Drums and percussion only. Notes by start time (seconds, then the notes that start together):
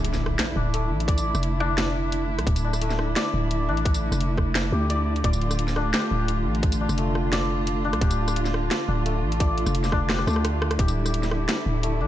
0.04 closed hi-hat
0.14 snare, tambourine
0.26 cross-stick
0.39 snare, closed hi-hat
0.74 closed hi-hat
1.00 closed hi-hat
1.08 kick, closed hi-hat
1.18 closed hi-hat, tambourine
1.35 cross-stick, tambourine
1.43 closed hi-hat
1.60 cross-stick
1.78 snare, closed hi-hat
2.12 closed hi-hat
2.39 cross-stick, closed hi-hat
2.47 kick, closed hi-hat
2.56 closed hi-hat, tambourine
2.73 cross-stick, tambourine
2.81 closed hi-hat
2.90 snare, tambourine
2.99 cross-stick
3.16 snare, closed hi-hat
3.51 closed hi-hat
3.77 closed hi-hat
3.85 kick, closed hi-hat
3.94 closed hi-hat, tambourine
4.12 cross-stick, tambourine
4.21 closed hi-hat
4.37 kick, cross-stick
4.55 snare, closed hi-hat
4.90 closed hi-hat
5.16 closed hi-hat
5.24 kick, closed hi-hat
5.33 tambourine
5.42 closed hi-hat
5.51 cross-stick, tambourine
5.59 closed hi-hat
5.68 snare, tambourine
5.76 cross-stick
5.94 snare, closed hi-hat
6.28 closed hi-hat
6.55 closed hi-hat
6.63 kick, closed hi-hat
6.72 closed hi-hat, tambourine
6.89 cross-stick, tambourine
6.98 closed hi-hat
7.15 cross-stick
7.33 snare, closed hi-hat
7.67 closed hi-hat
7.93 cross-stick, closed hi-hat
8.01 kick, closed hi-hat
8.11 closed hi-hat, tambourine
8.28 cross-stick, tambourine
8.36 closed hi-hat
8.45 snare, tambourine
8.54 cross-stick
8.71 snare, closed hi-hat
9.06 closed hi-hat
9.32 closed hi-hat
9.40 kick, closed hi-hat
9.58 closed hi-hat
9.66 cross-stick, tambourine
9.75 closed hi-hat
9.84 snare, tambourine
9.92 kick, cross-stick
10.10 cross-stick, snare
10.19 cross-stick
10.27 cross-stick, tambourine
10.30 tambourine
10.33 cross-stick, tambourine
10.45 cross-stick, closed hi-hat
10.62 cross-stick
10.71 cross-stick, closed hi-hat
10.79 kick, closed hi-hat
10.88 closed hi-hat, tambourine
11.06 cross-stick, tambourine
11.14 closed hi-hat
11.23 snare, tambourine
11.31 cross-stick
11.49 snare, closed hi-hat
11.83 closed hi-hat